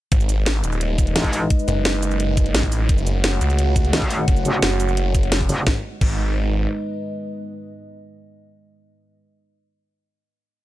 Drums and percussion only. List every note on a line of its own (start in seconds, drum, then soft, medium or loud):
0.12 kick loud
0.12 closed hi-hat loud
0.20 shaker soft
0.29 closed hi-hat medium
0.29 shaker medium
0.46 snare loud
0.46 closed hi-hat loud
0.64 closed hi-hat medium
0.64 shaker medium
0.72 shaker soft
0.81 closed hi-hat loud
0.98 kick loud
0.98 closed hi-hat medium
0.98 shaker medium
1.07 closed hi-hat soft
1.16 snare loud
1.16 closed hi-hat loud
1.24 kick medium
1.24 closed hi-hat soft
1.33 open hi-hat medium
1.33 shaker medium
1.50 kick loud
1.50 closed hi-hat loud
1.59 shaker soft
1.68 closed hi-hat medium
1.68 shaker medium
1.85 snare loud
1.85 closed hi-hat loud
2.02 closed hi-hat medium
2.02 shaker medium
2.11 shaker soft
2.20 closed hi-hat loud
2.37 kick loud
2.37 closed hi-hat medium
2.37 shaker medium
2.46 closed hi-hat soft
2.55 snare loud
2.55 closed hi-hat loud
2.63 kick medium
2.63 closed hi-hat soft
2.72 open hi-hat medium
2.72 shaker medium
2.89 kick loud
2.89 closed hi-hat loud
2.98 shaker soft
3.07 closed hi-hat medium
3.07 shaker medium
3.24 snare loud
3.24 closed hi-hat loud
3.41 closed hi-hat medium
3.41 shaker medium
3.50 shaker soft
3.59 closed hi-hat loud
3.76 kick loud
3.76 closed hi-hat medium
3.76 shaker medium
3.85 closed hi-hat soft
3.93 snare loud
3.93 closed hi-hat loud
4.02 kick medium
4.02 closed hi-hat soft
4.11 open hi-hat medium
4.11 shaker medium
4.28 kick loud
4.28 closed hi-hat loud
4.36 shaker soft
4.45 closed hi-hat medium
4.45 shaker medium
4.62 snare loud
4.62 closed hi-hat medium
4.80 closed hi-hat medium
4.80 shaker medium
4.89 shaker soft
4.97 closed hi-hat loud
5.15 kick loud
5.15 closed hi-hat medium
5.15 shaker medium
5.23 closed hi-hat soft
5.32 snare loud
5.32 closed hi-hat loud
5.41 kick medium
5.41 closed hi-hat soft
5.49 open hi-hat medium
5.49 shaker medium
5.67 kick loud
5.67 snare medium
6.01 kick loud
6.01 crash medium